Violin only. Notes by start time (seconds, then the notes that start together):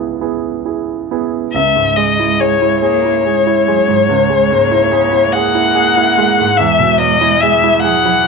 1.53 E5
1.96 D#5
2.40 C#5
2.83 C#5
5.33 F#5
6.57 E5
7.00 D#5
7.41 E5
7.83 F#5